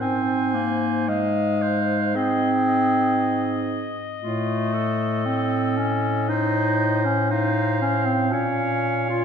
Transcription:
0.00 G#2 C4 C5 G#5
0.54 A#3
1.08 G#3 D#5 F5
1.62 C5
2.15 C4 G#4 D#5
2.68 D#5
4.22 A2 A3 F4
4.73 A4
5.26 C4
5.78 C#4
6.29 D#4 C5
7.05 C#4
7.30 D#4 C5 F5
7.82 C#4
8.06 C4
8.32 A#2 C#4 C#5 F5
9.09 F4

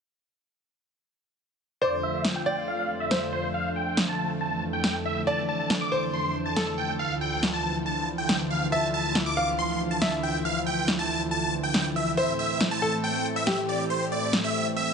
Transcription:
1.81 F2 D3 A3 F4 C5 D5
2.03 E5
2.25 snare
2.36 G5
2.46 D5
2.68 F5
3.00 E5
3.11 C5, snare
3.33 C5
3.54 F5
3.76 G5
3.97 snare
4.08 A5
4.41 E3 A5
4.73 G5
4.84 snare
5.05 E5
5.27 D5 A5
5.49 A5
5.70 snare
5.81 D6
5.92 C5
6.13 C6
6.46 A5
6.56 A4, snare
6.78 G5
6.99 D2 F3 F5
7.21 G5
7.43 snare
7.53 A5
7.86 A5
8.18 G5
8.29 snare
8.51 F5
8.72 E5 A5
8.94 A5
9.15 snare
9.26 D6
9.37 F5
9.59 C6
9.91 A5
10.02 E5, snare
10.23 G5
10.45 F5
10.66 G5
10.88 snare
10.99 A5
11.31 A5
11.63 G5
11.74 snare
11.96 E5
12.17 A2 A3 C4 C5 E5
12.39 E5
12.61 snare
12.71 A5
12.82 A4
13.04 G5
13.36 E5
13.47 G4, snare
13.69 D5
13.90 C5
14.12 D5
14.33 snare
14.44 E5
14.76 E5

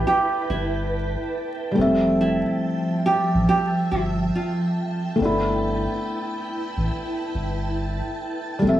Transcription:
Already playing: A3 B3 D4 E4 B4 G5 A5
0.07 G4
0.49 G1 E4
1.71 G3 A3
1.76 F1 F3 C4 E5
1.81 E5
2.21 E4
3.06 G4
3.34 A1
3.49 G4
3.92 G1 E4
4.35 F4
5.16 A3 B3 E4 B4
5.20 G1 D4
5.25 E4
6.77 A1
7.34 G1
8.59 F3 G3 A3 E5 G5
8.63 F1 C4
8.69 E5

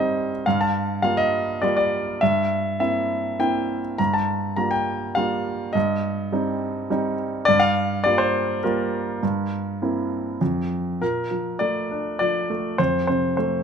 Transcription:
Already playing: G2 G3 C4 D#4 C5 D#5
0.46 G2 F5
0.61 A5
1.02 G3 A#3 F4 F5
1.17 D#5
1.62 G3 A#3 F4 D5
1.77 D5
2.21 G2 E5
2.80 A#3 C4 E4 E5
3.39 A#3 C4 E4 G5
3.98 G2 A#5
4.14 A5
4.56 G3 A#3 F4 A#5
4.71 G5
5.15 G3 A#3 F4 F5
5.73 G2 D#5
6.32 G3 C4 D#4
6.90 G3 C4 D#4
7.45 G2 D5
7.60 F5
8.04 G3 A#3 F4 D5
8.18 C5
8.63 G3 A#3 F4 A#4
9.23 G2
9.82 A#3 C4 E4
10.41 F2
11.01 A#2 A#4
11.31 F3
11.59 A3 D5
11.91 D4
12.19 F3 D5
12.50 A3
12.78 F2 C5
13.07 C3 C5
13.37 A3 C5

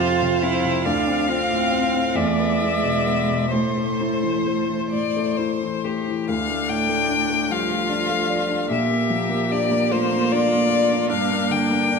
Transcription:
Already playing: F2 C3 C4 F4 C5 F5
0.00 F4
0.22 C3
0.42 C4 E4
0.64 C3
0.85 D2 D4 F5
1.07 C4
1.29 C4 F4
1.50 A2
1.71 C4
1.93 A2
2.15 E2 A3 D5 E5
2.38 B3
2.61 G#3 E4
2.83 B2
3.06 B3
3.29 B2
3.51 A2 A3 C5
3.77 A3
4.00 E4
4.23 E3
4.46 A3
4.70 E3
4.91 A2 D5
5.16 A3
5.37 E4 C5
5.62 E3
5.84 A3 G4
6.08 E3
6.29 D2 A3 D4 F5
6.49 A3
6.69 A2 G5
6.89 A3
7.09 D4
7.30 A3
7.50 F3 G3 F4 F5
7.70 A3
7.89 D4
8.10 A3
8.30 D5
8.49 D4
8.70 A#2 A#3 G4 E5
8.89 A#3
9.10 F3
9.29 A#3
9.51 D4 D5
9.71 A#3
9.91 A3 F4 C5
10.12 A#3
10.32 D4 D5
10.52 A#3
10.70 D5
10.91 D4
11.09 G2 D4 F5
11.31 A#3
11.51 D3 G5
11.70 A#3
11.90 D4

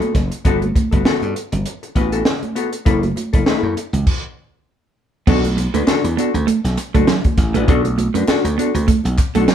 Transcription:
Already playing: B3 F#4 A4
0.02 closed hi-hat, muted conga, high conga
0.15 F#1, muted hollow-body jazz guitar stroke, kick, snare, closed hi-hat
0.31 muted hollow-body jazz guitar stroke, closed hi-hat
0.45 G1 B3 F#4 A4, kick, closed hi-hat, low conga
0.62 muted hollow-body jazz guitar stroke, closed hi-hat, muted conga, high conga
0.75 muted hollow-body jazz guitar stroke, kick, closed hi-hat, high conga
0.91 G1 B3 F#4 A4, kick, closed hi-hat
1.05 B3 F#4 A4, muted slap bass stroke, snare
1.22 G2, closed hi-hat
1.36 muted hollow-body jazz guitar stroke, closed hi-hat
1.52 G1, muted hollow-body jazz guitar stroke, closed hi-hat, low conga
1.66 muted hollow-body jazz guitar stroke, closed hi-hat
1.83 muted hollow-body jazz guitar stroke, closed hi-hat
1.95 A1 B3 F#4 B4, kick, closed hi-hat
2.12 B3 F#4 A4, closed hi-hat
2.25 muted hollow-body jazz guitar stroke, snare
2.43 closed hi-hat, high conga
2.55 B3 F#4 A4, closed hi-hat
2.73 muted hollow-body jazz guitar stroke, closed hi-hat
2.85 F#1 A#3 E4 A4, kick, closed hi-hat, muted conga, low conga
3.02 muted hollow-body jazz guitar stroke, closed hi-hat, muted conga, high conga
3.16 muted hollow-body jazz guitar stroke, closed hi-hat, high conga
3.33 F#1 A#3 E4 A4, kick, closed hi-hat
3.46 A3 D#4 G#4, muted slap bass stroke, snare
3.58 A#3 E4 A4
3.63 F#2, muted conga
3.77 muted hollow-body jazz guitar stroke, closed hi-hat
3.93 C#2, muted hollow-body jazz guitar stroke, closed hi-hat, low conga
4.07 kick, crash
5.27 B1 B3 D4 F#4 A4, kick, crash, muted conga, low conga
5.44 muted hollow-body jazz guitar stroke, closed hi-hat, high conga
5.57 muted clean electric guitar stroke, muted hollow-body jazz guitar stroke, closed hi-hat, high conga
5.74 D2 A3 D4 F#4 B4, closed hi-hat
5.87 D4 F#4 A4, muted slap bass stroke, snare, clap
6.04 E2, closed hi-hat, muted conga
6.17 B3 D4 F#4 A4, closed hi-hat
6.34 D2, muted hollow-body jazz guitar stroke, closed hi-hat, low conga
6.47 A3, muted slap bass stroke, muted hollow-body jazz guitar stroke, closed hi-hat, muted conga
6.64 B1, muted hollow-body jazz guitar stroke, snare, closed hi-hat
6.78 muted clean electric guitar stroke, clap, closed hi-hat
6.94 F#1 A3 D4 F#4 A4, kick, closed hi-hat
7.07 F#3, muted hollow-body jazz guitar stroke, snare, clap, muted conga
7.24 muted hollow-body jazz guitar stroke, kick, closed hi-hat, muted conga, high conga
7.37 A1, muted clean electric guitar stroke, kick, snare, closed hi-hat
7.54 A1 A3 D4 F#4 B4, closed hi-hat
7.68 B1 B3 D4 F#4 A4, kick, closed hi-hat, low conga
7.84 muted hollow-body jazz guitar stroke, closed hi-hat, high conga
7.98 muted hollow-body jazz guitar stroke, muted clean electric guitar stroke, closed hi-hat, high conga
8.14 F#2 A3 D4 F#4 B4, closed hi-hat
8.28 D4 F#4 A4, muted slap bass stroke, snare, clap
8.44 D2, muted hollow-body jazz guitar stroke, closed hi-hat, muted conga
8.58 B3 D4 F#4 A4, closed hi-hat
8.74 D2, muted hollow-body jazz guitar stroke, closed hi-hat, low conga
8.88 A3, muted hollow-body jazz guitar stroke, kick, closed hi-hat
9.04 B1, muted hollow-body jazz guitar stroke, closed hi-hat, muted conga
9.18 muted clean electric guitar stroke, kick, clap, closed hi-hat
9.35 B1 A3 D4 F#4 A4, closed hi-hat
9.48 F#3, muted hollow-body jazz guitar stroke, snare, clap, muted conga

